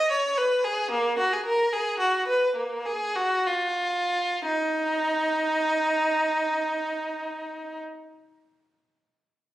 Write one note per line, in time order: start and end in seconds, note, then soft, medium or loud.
0.00 0.11 D#5 loud
0.11 0.37 C#5 medium
0.37 0.64 B4 medium
0.64 0.92 G#4 medium
0.91 1.18 A#3 medium
1.19 1.32 F#4 medium
1.33 1.46 G#4 medium
1.46 1.72 A#4 medium
1.73 2.00 G#4 medium
1.99 2.27 F#4 medium
2.27 2.56 B4 medium
2.56 2.85 A#3 medium
2.85 3.16 G#4 medium
3.16 3.46 F#4 medium
3.46 4.45 F4 medium
4.46 7.80 D#4 medium